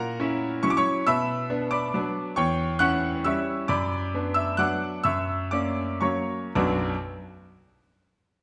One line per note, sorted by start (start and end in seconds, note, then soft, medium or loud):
0.00 0.18 A#2 medium
0.00 0.59 A#4 medium
0.00 0.59 F#5 medium
0.00 0.63 A#5 medium
0.20 0.60 C#4 medium
0.20 0.60 E4 medium
0.63 1.02 F#3 soft
0.63 1.03 C#4 soft
0.63 1.03 E4 medium
0.63 0.70 C#6 medium
0.70 0.77 D6 medium
0.77 1.05 C#5 medium
0.77 1.06 C#6 medium
1.07 1.48 B2 medium
1.07 1.68 E5 medium
1.07 1.68 B5 medium
1.07 1.71 E6 medium
1.50 1.90 B3 medium
1.50 1.90 D4 medium
1.71 2.34 D5 medium
1.71 2.33 B5 medium
1.71 2.37 D6 medium
1.94 2.33 F#3 soft
1.94 2.34 B3 medium
1.94 2.34 D4 medium
2.36 2.79 E2 medium
2.36 2.77 C#5 medium
2.36 2.77 G5 medium
2.36 2.79 C#6 medium
2.79 3.21 C#4 medium
2.79 3.21 E4 medium
2.79 3.22 F#5 medium
2.79 3.22 C#6 medium
2.79 3.25 F#6 loud
3.24 3.65 G3 medium
3.24 3.66 C#4 soft
3.24 3.66 E4 medium
3.24 3.67 E5 medium
3.24 3.67 C#6 medium
3.24 3.69 E6 medium
3.68 4.12 F#2 medium
3.68 4.32 D5 medium
3.68 4.32 B5 medium
3.68 4.35 D6 medium
4.14 4.56 B3 medium
4.14 4.56 D4 medium
4.34 4.58 E5 medium
4.34 4.59 E6 medium
4.57 5.01 F#3 soft
4.57 5.01 B3 soft
4.57 5.01 D4 medium
4.57 5.02 F#5 medium
4.57 5.02 D6 medium
4.57 5.04 F#6 medium
5.04 5.50 F#2 medium
5.04 5.49 E5 medium
5.04 5.49 C#6 medium
5.04 5.51 E6 medium
5.51 5.99 A#3 soft
5.51 5.99 C#4 soft
5.51 6.00 D5 medium
5.51 6.02 D6 medium
6.01 6.51 F#3 soft
6.01 6.52 A#3 soft
6.01 6.52 C#4 soft
6.01 6.52 C#5 medium
6.01 6.51 A#5 soft
6.01 6.55 C#6 medium
6.55 6.83 B1 medium
6.55 6.83 F#2 medium
6.55 6.83 F#3 medium
6.55 6.84 B3 medium
6.55 6.84 D4 medium
6.55 6.84 F#4 medium
6.55 6.83 D6 medium